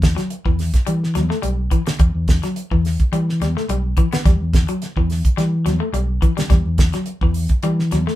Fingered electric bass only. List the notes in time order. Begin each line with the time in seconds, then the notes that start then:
Already playing: E2
0.46 E2
0.88 E3
1.16 E2
1.43 B1
1.99 E2
2.14 E2
2.71 E2
3.12 E3
3.41 E2
3.69 B1
4.26 E2
4.40 E2
4.97 E2
5.38 E3
5.65 E2
5.93 B1
6.50 E2
6.65 E2
7.21 E2
7.63 E3
7.92 E2